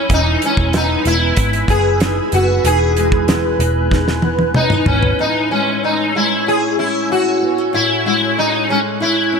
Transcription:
Already playing: C#4 E4
0.10 E1 E3 D#4 B4 G#5 B5 E6, kick, closed hi-hat
0.42 G#3 C#4, closed hi-hat
0.57 E1, kick
0.73 B3 D#4, snare, closed hi-hat
1.05 E1 G#3 E4, closed hi-hat
1.37 G#1, kick, closed hi-hat
1.53 closed hi-hat
1.68 F#1 B3 G#4, kick, closed hi-hat
2.00 D#4, snare, closed hi-hat
2.32 F#1 B3 F#4, closed hi-hat
2.63 E1 E3 D#4 G#4 F#6, closed hi-hat
2.97 G#3, closed hi-hat
3.12 kick
3.28 B3, snare, closed hi-hat
3.59 E1 G#3, closed hi-hat
3.91 D#4, kick, snare
4.08 snare
4.22 B3, high tom
4.39 high tom
4.54 C#4 D#4, mid tom
4.70 D#4, mid tom
4.86 G#1 B3 C#4, floor tom
5.03 floor tom
5.18 A2 D#4 C#5 G#5 E6
5.51 G#3 C#4
5.83 C#4 D#4
6.15 G#3 E4
6.47 E4 G#4
6.79 C#4 E4
7.10 E4 F#4
7.42 B3
7.58 C#4
7.73 A2 E4 F#6
8.05 G#3 E4
8.37 C#4 D#4
8.69 G#3 C#4
9.00 E4
9.32 C#4

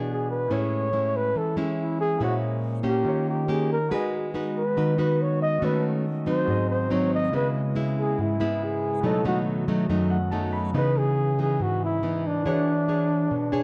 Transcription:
Already playing: B2 E3 B3 D4 F#4 G#4 B4
0.10 G#4
0.31 B4
0.48 A2 G#3 C#4 E4 G#4 B4
0.53 C#5
0.93 G#3 C#4 E4
1.16 B4
1.35 E3 A4
1.57 G#3 C#4 E4
1.81 E4
2.01 G#4
2.17 A#2 G#3 A#3 C#4 E4 G#4
2.21 E4 F#4 C5 C#5
2.83 A#3 C#4 G4
3.02 D#3 F4 G4
3.07 A#4 C#5
3.29 G4
3.48 A#3 C#4 G4 G#4
3.72 A#4
3.88 D#3 G#3 B3 D#4 F#4 G#4 B4
3.92 G#4 B4 D#5
4.34 D#4 F#4 B4
4.58 B4
4.77 D#3 D#4 F#4 B4
4.98 D#4 F#4 B4
5.22 C#5
5.42 D#5
5.59 D#3 A3 C#4 F#4 A4 C#5
5.65 B4 D#5
6.26 F#3 C4 D#4 C5
6.44 G#2 G#3 C4 F#4 G#4
6.49 C5 D#5
6.70 C5
6.90 F#3 C4 D#4 C#5
7.14 D#5
7.30 C#3 G#3 B3 E4 G#4
7.34 B4 D#5
7.76 G#3 B3 E4
8.00 G#4
8.18 G#2 E4
8.40 G#3 B3 E4
8.64 G#4
9.01 B2 D#3 F#3 A3 B3 D#4 F#4 A4
9.05 A4 C#5 D#5
9.25 F#3 A3 D#4 F#4
9.68 F#3 A3 D#4
9.89 F#2 F#3 A3 D#4
10.10 F#5
10.31 F#3 A3 D#4 A5
10.53 B5
10.71 C#3 E3 B3 D#4 G#4
10.76 B4 D#5
10.99 G#4
11.39 E3 B3 D#4 G#4
11.60 G#2 F#4
11.84 E4
12.03 E3 B3 D#4
12.27 D4
12.42 E3 D4 F#4 G#4
12.47 B4 C#5
12.88 D4 G#4 C#5
13.31 B2
13.52 D4 G#4 C#5 G#5

